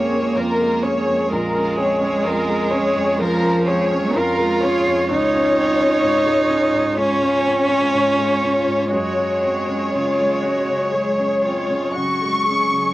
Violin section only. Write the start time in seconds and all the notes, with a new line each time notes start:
Already playing: C#5
0.38 A#4
0.84 C#5
1.32 A#4
1.80 C#5
2.26 A#4
2.72 C#5
3.20 A#4
3.68 C#5
4.15 A#4
4.62 C#5
5.10 C#5
6.97 C#5
8.92 C#5
11.95 C#6